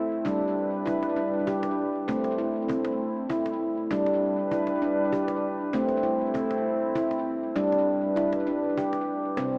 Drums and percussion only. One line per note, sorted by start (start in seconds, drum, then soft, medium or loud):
0.26 cajon bass soft
0.72 cajon slap soft
0.87 cajon bass medium
1.03 cajon slap soft
1.47 cajon bass medium
1.63 cajon slap soft
2.09 cajon bass medium
2.24 cajon slap soft
2.69 cajon bass medium
2.85 cajon slap soft
3.30 cajon bass medium
3.46 cajon slap soft
3.91 cajon bass medium
4.06 cajon slap soft
4.51 cajon bass medium
4.67 cajon slap soft
5.13 cajon bass medium
5.28 cajon slap soft
5.73 cajon bass soft
5.89 cajon slap soft
6.35 cajon bass soft
6.51 cajon slap soft
6.96 cajon bass medium
7.11 cajon slap soft
7.56 cajon bass soft
7.56 cajon slap soft
7.72 cajon slap soft
8.17 cajon bass medium
8.17 cajon slap soft
8.33 cajon slap soft
8.63 cajon slap soft
8.78 cajon bass medium
8.93 cajon slap soft
9.08 cajon slap soft
9.37 cajon bass soft
9.37 cajon slap medium